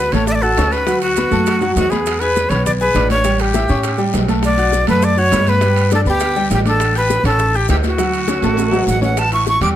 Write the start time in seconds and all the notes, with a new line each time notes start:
Already playing: B4
0.12 A1 A3 A4 C#5 A5, high bongo, high conga, low conga, high timbale, short guiro, maracas
0.27 D5, high bongo, high conga, long guiro, maracas
0.32 D5 E5
0.42 F#4 A4 F#5 F#6, high bongo, high conga, maracas
0.57 D2 C#4 C#5 C#6, high bongo, low bongo, high conga, high timbale, low timbale, short guiro, maracas
0.72 B4, high bongo, high timbale, short guiro, maracas
0.87 F#3 F#4 F#5, high bongo, high conga, high timbale, long guiro, maracas
1.01 F#4, high conga, high timbale, maracas
1.16 B3 B4 B5, high bongo, high conga, high timbale, low timbale, short guiro, maracas
1.31 F#2 A3 A4 A5, high bongo, high conga, short guiro, maracas
1.46 high bongo, high conga, high timbale, long guiro, maracas
1.61 F#3 F#4 F#5, high bongo, high conga, maracas
1.76 E2 F#4, high bongo, low bongo, high conga, high timbale, low timbale, short guiro, maracas
1.90 B3 G#4 B4 B5, high bongo, high conga, high timbale, short guiro, maracas
2.06 high bongo, high conga, high timbale, long guiro, maracas
2.20 G#4 B4 G#5 G#6, high conga, high timbale, maracas
2.36 high bongo, high conga, low timbale, short guiro, maracas
2.49 B1 B3 B4 C#5 B5, high bongo, high conga, low conga, high timbale, short guiro, maracas
2.66 D5, high bongo, high conga, low conga, long guiro, maracas
2.81 G#4 B4 G#5 G#6, high bongo, high conga, maracas
2.95 A1 D4 D5 D6, high bongo, low bongo, high conga, high timbale, low timbale, short guiro, maracas
3.09 C#5, high bongo, high conga, high timbale, short guiro, maracas
3.24 G3 G4 G5, high bongo, high timbale, long guiro, maracas
3.39 G4, high conga, high timbale, maracas
3.54 E4 E5 E6, high bongo, high conga, high timbale, low timbale, short guiro, maracas
3.69 A2 C#4 C#5 C#6, high bongo, high conga, short guiro, maracas
3.83 high bongo, high conga, high timbale, long guiro, maracas
3.98 G3 G4 G5, high bongo, high conga, maracas
4.13 B1, high bongo, low bongo, high conga, high timbale, low timbale, short guiro, maracas
4.28 A3 A4 A5, high bongo, high conga, high timbale, short guiro, maracas
4.43 D5, high bongo, high conga, high timbale, long guiro, maracas
4.58 F#4 F#5 F#6, high conga, high timbale, maracas
4.73 high bongo, high conga, low timbale, short guiro, maracas
4.87 F#2 A3 A4 B4 A5, high bongo, high conga, low conga, high timbale, short guiro, maracas
5.02 D5, high bongo, high conga, long guiro, maracas
5.17 F#4 C#5 F#5 F#6, high bongo, high conga, maracas
5.32 G2 B3 B4 B5, high bongo, low bongo, high conga, high timbale, low timbale, short guiro, maracas
5.47 B4, high bongo, high conga, high timbale, short guiro, maracas
5.61 G3 G4 G5, high bongo, high conga, high timbale, long guiro, maracas
5.76 high conga, high timbale, maracas
5.91 D4 A4 D5 D6, high bongo, high conga, high timbale, low timbale, short guiro, maracas
6.05 D2 B3 G4 B4 B5, high bongo, high conga, short guiro, maracas
6.20 high bongo, high conga, high timbale, long guiro, maracas
6.36 G3 G4 G5, high bongo, high conga, maracas
6.50 A1 G4, high bongo, low bongo, high conga, high timbale, low timbale, short guiro, maracas
6.66 D4 A4 D5 D6, high bongo, high conga, high timbale, short guiro, maracas
6.80 high bongo, high timbale, long guiro, maracas
6.95 G4 B4 G5 G6, high conga, high timbale, maracas
7.10 high bongo, high conga, low timbale, short guiro, maracas
7.24 A1 C#4 A4 C#5 C#6, high bongo, high conga, low conga, high timbale, short guiro, maracas
7.39 high bongo, high conga, long guiro, maracas
7.54 G4 G5 G6, high bongo, high conga, maracas
7.68 D2 E4 G4 E5 E6, high bongo, low bongo, high conga, high timbale, low timbale, short guiro, maracas
7.84 F#4, high bongo, high conga, high timbale, short guiro, maracas
7.98 F#3 F#4 F#5, high bongo, high conga, high timbale, long guiro, maracas
8.13 high conga, high timbale, maracas
8.28 C#4 C#5 C#6, high bongo, high conga, high timbale, low timbale, short guiro, maracas
8.42 A1 A3 A4 A5, high bongo, high conga, high timbale, short guiro, maracas
8.57 high bongo, high conga, high timbale, long guiro, maracas
8.72 F#3 F#4 F#5, high bongo, high conga, low timbale, maracas
8.87 A1 F#5, low bongo, high conga, low timbale, short guiro, maracas
9.01 C#4 C#5 F#5 C#6, low bongo, high conga, low timbale, short guiro, maracas
9.17 A5, high bongo, high conga, high timbale, long guiro, maracas
9.32 E4 E5 C#6 E6, high conga, high timbale, maracas
9.46 C#6, high bongo, high conga, low timbale, short guiro, maracas
9.61 E2 G3 G4 G5 D6, high bongo, high conga, low conga, high timbale, short guiro, maracas